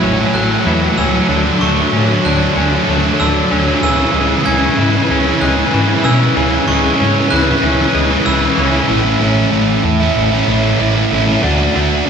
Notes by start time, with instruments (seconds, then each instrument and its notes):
Already playing: clean electric guitar A2 E3 A3
0.02 fingered electric bass A1, overdriven electric guitar A2, clean electric guitar C#4
0.06 overdriven electric guitar F#3
0.13 overdriven electric guitar A2 F#3
0.21 overdriven electric guitar A2 F#3
0.27 overdriven electric guitar A2 F#3
0.33 fingered electric bass A1, overdriven electric guitar A2 F#3, clean electric guitar A3, glockenspiel F#6
0.44 overdriven electric guitar A2 F#3
0.52 overdriven electric guitar A2 F#3
0.59 overdriven electric guitar A2 F#3
0.66 fingered electric bass E2, overdriven electric guitar A2 F#3, clean electric guitar E3
0.74 overdriven electric guitar A2 F#3
0.82 overdriven electric guitar A2 F#3
0.89 overdriven electric guitar A2 F#3
0.98 fingered electric bass C#2, overdriven electric guitar A2 F#3, clean electric guitar C#4, glockenspiel E6
1.05 overdriven electric guitar A2 F#3
1.13 overdriven electric guitar A2 F#3
1.20 overdriven electric guitar A2 F#3
1.28 fingered electric bass D2, overdriven electric guitar D3 F#3, clean electric guitar D3
1.36 overdriven electric guitar D3 F#3
1.44 overdriven electric guitar D3 F#3
1.52 overdriven electric guitar D3 F#3
1.59 fingered electric bass D2, overdriven electric guitar D3 F#3, clean electric guitar A3, glockenspiel C#6
1.67 overdriven electric guitar D3 F#3
1.75 overdriven electric guitar D3 F#3
1.81 overdriven electric guitar D3 F#3
1.90 fingered electric bass A2, overdriven electric guitar D3 F#3, clean electric guitar C#4
1.98 overdriven electric guitar D3 F#3
2.05 overdriven electric guitar D3 F#3
2.12 overdriven electric guitar D3 F#3
2.20 overdriven electric guitar D3 F#3
2.25 fingered electric bass D2, clean electric guitar D3, overdriven electric guitar D3 F#3, glockenspiel F#6
2.36 overdriven electric guitar D3 F#3
2.43 overdriven electric guitar D3 F#3
2.52 overdriven electric guitar D3 F#3
2.56 fingered electric bass D2, overdriven electric guitar D3 F#3, clean electric guitar C#4
2.67 overdriven electric guitar D3 F#3
2.74 overdriven electric guitar D3 F#3
2.82 overdriven electric guitar D3 F#3
2.88 fingered electric bass D2, overdriven electric guitar D3 F#3, clean electric guitar A3
2.99 overdriven electric guitar D3 F#3
3.05 overdriven electric guitar D3 F#3
3.13 overdriven electric guitar D3 F#3
3.20 fingered electric bass D2, clean electric guitar D3, overdriven electric guitar D3 F#3, glockenspiel E6
3.28 overdriven electric guitar D3 F#3
3.36 overdriven electric guitar D3 F#3
3.44 overdriven electric guitar D3 F#3
3.51 fingered electric bass D2, overdriven electric guitar D3 F#3, clean electric guitar C#4
3.59 overdriven electric guitar D3 F#3
3.67 overdriven electric guitar D3 F#3
3.74 overdriven electric guitar D3 F#3
3.82 fingered electric bass C#2, overdriven electric guitar C#3 E3, clean electric guitar C#3, glockenspiel E6
3.90 overdriven electric guitar C#3 E3
3.96 overdriven electric guitar C#3 E3
4.05 overdriven electric guitar C#3 E3
4.12 fingered electric bass C#2, overdriven electric guitar C#3 E3, clean electric guitar G#3
4.21 overdriven electric guitar C#3 E3
4.28 overdriven electric guitar C#3 E3
4.35 overdriven electric guitar C#3 E3
4.43 fingered electric bass C#2, overdriven electric guitar C#3 E3, clean electric guitar C#4, glockenspiel G#6
4.51 overdriven electric guitar C#3 E3
4.57 overdriven electric guitar C#3 E3
4.66 overdriven electric guitar C#3 E3
4.74 fingered electric bass G#2, overdriven electric guitar C#3 E3
4.79 overdriven electric guitar C#3, clean electric guitar E3
4.83 overdriven electric guitar E3
4.90 overdriven electric guitar C#3 E3
4.97 overdriven electric guitar C#3 E3
5.04 overdriven electric guitar C#3 E3
5.10 fingered electric bass C#2, overdriven electric guitar C#3 E3, clean electric guitar C#4
5.20 overdriven electric guitar C#3 E3
5.27 overdriven electric guitar C#3 E3
5.35 overdriven electric guitar C#3 E3
5.41 fingered electric bass C#2, overdriven electric guitar C#3 E3, clean electric guitar G#3, glockenspiel F#6
5.50 overdriven electric guitar C#3 E3
5.57 overdriven electric guitar C#3 E3
5.66 overdriven electric guitar C#3 E3
5.73 fingered electric bass G#2, overdriven electric guitar C#3 E3, clean electric guitar E3
5.81 overdriven electric guitar C#3 E3
5.88 overdriven electric guitar C#3 E3
5.95 overdriven electric guitar C#3 E3
6.04 fingered electric bass B2, overdriven electric guitar C#3 E3, clean electric guitar C#4, glockenspiel E6
6.12 overdriven electric guitar C#3 E3
6.19 overdriven electric guitar C#3 E3
6.26 overdriven electric guitar C#3 E3
6.36 fingered electric bass C#2, overdriven electric guitar C#3 E3, clean electric guitar C#3
6.44 overdriven electric guitar C#3 E3
6.51 overdriven electric guitar C#3 E3
6.59 overdriven electric guitar C#3 E3
6.67 fingered electric bass C#2, overdriven electric guitar C#3 E3, clean electric guitar G#3, glockenspiel C#6
6.73 overdriven electric guitar C#3 E3
6.81 overdriven electric guitar C#3 E3
6.90 overdriven electric guitar C#3 E3
6.96 overdriven electric guitar C#3 E3, clean electric guitar C#4
7.01 fingered electric bass G#2, overdriven electric guitar E3
7.05 overdriven electric guitar C#3
7.12 overdriven electric guitar C#3 E3
7.20 overdriven electric guitar C#3 E3
7.27 overdriven electric guitar C#3 E3, clean electric guitar E3, glockenspiel F#6
7.32 fingered electric bass C#2, overdriven electric guitar C#3 E3
7.43 overdriven electric guitar C#3 E3
7.50 overdriven electric guitar C#3 E3
7.58 overdriven electric guitar C#3 E3
7.63 fingered electric bass C#2, overdriven electric guitar E3, clean electric guitar C#4
7.67 overdriven electric guitar C#3
7.73 overdriven electric guitar C#3 E3
7.81 overdriven electric guitar C#3 E3
7.88 overdriven electric guitar C#3 E3
7.95 fingered electric bass C#2, overdriven electric guitar C#3 E3, clean electric guitar G#3
8.03 overdriven electric guitar C#3 E3
8.11 overdriven electric guitar C#3 E3
8.19 overdriven electric guitar C#3 E3
8.26 fingered electric bass C#2, overdriven electric guitar C#3 E3, clean electric guitar E3, glockenspiel E6
8.34 overdriven electric guitar C#3 E3
8.42 overdriven electric guitar C#3 E3
8.49 overdriven electric guitar C#3 E3
8.56 fingered electric bass C#2, overdriven electric guitar C#3 E3, clean electric guitar C#4
8.63 overdriven electric guitar E3
8.67 overdriven electric guitar C#3
8.72 overdriven electric guitar C#3 E3
8.80 overdriven electric guitar C#3 E3
8.88 fingered electric bass A1, overdriven electric guitar A2 E3 A3 C#4 E4
9.03 overdriven electric guitar A3 C#4 E4
9.19 fingered electric bass A1, overdriven electric guitar E3 A3 C#4 E4
9.50 fingered electric bass A1, overdriven electric guitar A2 E3 A3 C#4 E4
9.84 fingered electric bass E2, muted overdriven electric guitar stroke
10.00 overdriven electric guitar A3 C#4 E4
10.16 fingered electric bass A1
10.31 overdriven electric guitar A3 C#4 E4
10.48 fingered electric bass A1, overdriven electric guitar E3 A3 C#4 E4
10.78 fingered electric bass A1, overdriven electric guitar A2 E3 A3 C#4 E4
10.95 overdriven electric guitar A3 C#4 E4
11.11 fingered electric bass A1, overdriven electric guitar E3 A3 C#4 E4
11.26 overdriven electric guitar A3 C#4 E4
11.41 fingered electric bass D2, overdriven electric guitar D3 A3 D4 F#4
11.57 overdriven electric guitar A3 D4 F#4
11.74 fingered electric bass D2, overdriven electric guitar D3 A3 D4 F#4
12.06 overdriven electric guitar D3